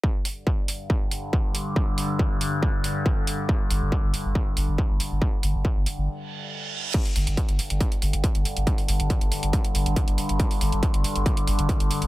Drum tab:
CC |----------------|----------------|----------------|----------------|
HH |--o---o---o---o-|--o---o---o---o-|--o---o---o---o-|--o---o---------|
BD |o---o---o---o---|o---o---o---o---|o---o---o---o---|o---o-----------|

CC |x---------------|----------------|----------------|
HH |xooxxxoxxxoxxxox|xooxxxoxxxoxxxox|xooxxxoxxxoxxxox|
BD |o---o---o---o---|o---o---o---o---|o---o---o---o---|